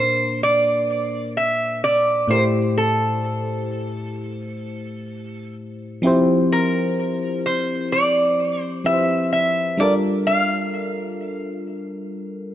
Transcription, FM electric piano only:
0.00 2.24 A#2 medium
0.00 2.25 A#3 medium
0.00 2.25 D4 medium
0.00 2.26 A#4 medium
0.00 2.27 C5 medium
2.28 5.99 A2 medium
2.28 6.00 A3 medium
2.28 6.01 E4 medium
2.28 6.01 G4 medium
2.32 2.37 A#4 medium
2.39 6.05 C5 medium
6.02 8.80 F3 medium
6.02 8.81 C4 medium
6.02 8.82 E4 medium
6.02 8.82 G4 medium
6.07 8.83 C5 medium
8.84 9.79 F3 medium
8.84 9.79 C4 soft
8.84 9.79 E4 soft
8.84 9.80 G4 soft
8.84 8.93 B4 soft
8.93 9.83 C5 medium
9.77 12.55 G3 medium
9.77 12.55 D4 medium
9.77 12.55 F4 medium
9.77 12.55 A4 medium
9.82 12.55 A#4 medium

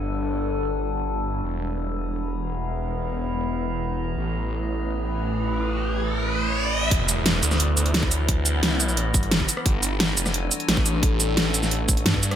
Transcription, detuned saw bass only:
0.00 1.41 G1 medium
1.43 4.15 E1 medium
4.17 6.90 A1 medium
6.91 7.41 E1 loud
7.43 7.76 D2 loud
7.77 8.75 D2 loud
8.75 8.97 C2 loud
8.97 9.13 A#1 loud
9.14 9.47 G1 loud
9.66 10.16 G1 loud
10.17 10.50 F1 medium
10.68 12.04 A1 medium
12.06 12.36 G2 medium

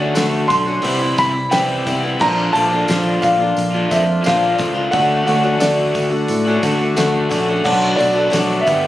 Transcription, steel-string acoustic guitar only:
0.00 0.14 A3 soft
0.00 0.17 C#4 soft
0.00 0.15 F#4 medium
0.15 0.66 D3 medium
0.15 0.66 A3 medium
0.15 0.64 F#4 medium
0.65 0.82 A3 soft
0.65 0.83 C#4 soft
0.65 0.83 F#4 medium
0.82 1.00 C3 medium
0.82 1.00 E3 medium
0.82 1.00 G3 medium
0.82 0.99 B3 medium
0.82 0.99 E4 medium
1.00 1.16 G3 soft
1.00 1.18 B3 soft
1.00 1.16 E4 medium
1.16 1.51 E3 medium
1.16 1.51 G3 medium
1.16 1.52 E4 medium
1.51 1.86 C3 medium
1.51 1.85 E3 medium
1.51 1.85 G3 medium
1.51 1.86 E4 medium
1.86 2.03 E3 medium
1.86 2.03 G3 medium
1.86 2.02 B3 medium
1.86 2.02 E4 medium
2.03 2.21 G3 soft
2.03 2.20 B3 soft
2.03 2.20 E4 soft
2.19 2.54 A#2 medium
2.19 2.52 F3 medium
2.19 2.54 D4 medium
2.19 2.55 F4 medium
2.53 2.71 F3 medium
2.53 2.71 A3 medium
2.53 2.70 D4 medium
2.53 2.71 F4 medium
2.72 2.89 A3 soft
2.72 2.88 D4 soft
2.72 2.87 F4 soft
2.88 3.39 A#2 medium
2.88 3.39 F3 medium
2.88 3.39 D4 medium
2.88 3.39 F4 medium
3.40 3.74 D4 soft
3.40 3.73 F4 medium
3.74 3.92 A3 soft
3.74 3.91 D4 medium
3.74 3.90 F4 medium
3.91 4.25 F3 medium
3.91 4.25 D4 medium
3.91 4.25 F4 medium
4.26 4.59 A#2 medium
4.26 4.57 F3 medium
4.26 4.58 D4 medium
4.26 4.58 F4 medium
4.58 4.75 F3 medium
4.58 4.75 A3 medium
4.58 4.74 D4 medium
4.58 4.73 F4 medium
4.74 4.91 A3 soft
4.74 4.92 D4 soft
4.74 4.92 F4 soft
4.92 5.25 D3 medium
4.92 5.26 A3 medium
4.92 5.27 F#4 medium
5.27 5.43 D3 medium
5.27 5.44 A3 medium
5.27 5.43 C#4 medium
5.27 5.42 F#4 medium
5.43 5.59 A3 soft
5.43 5.61 C#4 soft
5.43 5.60 F#4 medium
5.60 6.11 D3 medium
5.60 6.11 A3 medium
5.60 6.09 F#4 medium
6.10 6.46 A3 soft
6.10 6.45 F#4 soft
6.47 6.62 A3 soft
6.47 6.63 C#4 medium
6.47 6.62 F#4 medium
6.63 6.95 D3 medium
6.63 6.95 A3 medium
6.63 6.96 F#4 medium
6.96 7.28 D3 medium
6.96 7.30 A3 medium
6.96 7.31 F#4 loud
7.29 7.47 D3 medium
7.29 7.48 A3 medium
7.29 7.48 C#4 medium
7.29 7.47 F#4 medium
7.48 7.64 A3 soft
7.48 7.65 C#4 soft
7.48 7.65 F#4 soft
7.64 7.98 B2 medium
7.64 7.95 F#3 medium
7.64 7.96 A3 medium
7.64 7.97 D4 medium
7.64 7.98 F#4 medium
7.97 8.15 F#3 medium
7.97 8.15 A3 medium
7.97 8.14 D4 medium
7.97 8.13 F#4 medium
8.14 8.30 A3 soft
8.14 8.30 D4 soft
8.14 8.31 F#4 soft
8.30 8.65 B2 medium
8.30 8.66 F#3 medium
8.30 8.66 A3 medium
8.30 8.66 D4 medium
8.30 8.67 F#4 medium
8.67 8.87 G3 medium
8.67 8.87 B3 medium
8.67 8.87 D4 medium

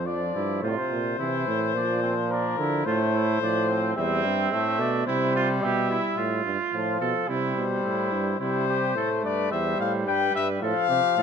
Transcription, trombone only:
0.06 0.62 F3 medium
0.63 1.18 C3 medium
1.20 1.76 E3 medium
1.75 2.85 F3 medium
2.86 3.41 A3 medium
3.42 3.96 F3 medium
3.97 4.54 G3 medium
4.52 5.07 A3 medium
5.07 6.43 G3 medium
6.73 7.25 F3 medium
7.28 8.38 G3 medium
8.40 8.92 G3 medium
8.96 9.53 A3 medium
9.51 10.64 G3 medium
10.62 11.23 F3 medium

